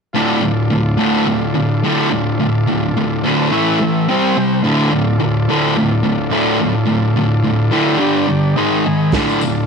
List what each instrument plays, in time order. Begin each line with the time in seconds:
0.13 distorted electric guitar D2 A2, transistor combo organ F4 A4 D5
0.17 distorted electric guitar D3
0.42 distorted electric guitar D2 A2
0.70 distorted electric guitar D2 A2
0.97 distorted electric guitar D2 A2 D3
1.26 distorted electric guitar D2 A2
1.54 distorted electric guitar D2 A2
1.84 distorted electric guitar D2 A2 D3
2.10 distorted electric guitar D2 A2
2.40 distorted electric guitar D2 A2
2.67 distorted electric guitar D2 A2
2.97 distorted electric guitar D2 A2
3.24 distorted electric guitar D2 A2 D3
3.51 distorted electric guitar A2 E3 A3, transistor combo organ E4 A4 E5
3.82 distorted electric guitar A2 E3
4.09 distorted electric guitar C3 G3 C4, transistor combo organ C4 G4 C5
4.37 distorted electric guitar C3 G3
4.62 distorted electric guitar D2 A2 D3, transistor combo organ F4 A4
4.67 transistor combo organ D5
4.91 distorted electric guitar D2 A2
5.20 distorted electric guitar D2 A2
5.49 distorted electric guitar D2 A2 D3
5.77 distorted electric guitar D2 A2
6.03 distorted electric guitar D2 A2
6.31 distorted electric guitar D2 A2 D3
6.61 distorted electric guitar D2 A2
6.87 distorted electric guitar D2 A2
7.16 distorted electric guitar D2 A2
7.43 distorted electric guitar D2 A2
7.71 distorted electric guitar D2 A2 D3
7.97 distorted electric guitar G2 D3 G3, transistor combo organ D4
8.02 transistor combo organ G4 D5
8.28 distorted electric guitar G2 D3
8.56 distorted electric guitar G#2 D#3 G#3, transistor combo organ D#4 G#4 D#5
8.86 distorted electric guitar G#2 D#3, transistor combo organ G#5
9.12 distorted electric guitar D2 A2 D3, transistor combo organ F4, kick, snare, open hi-hat, tambourine
9.16 transistor combo organ A4 D5
9.29 tambourine
9.41 distorted electric guitar D2 A2, tambourine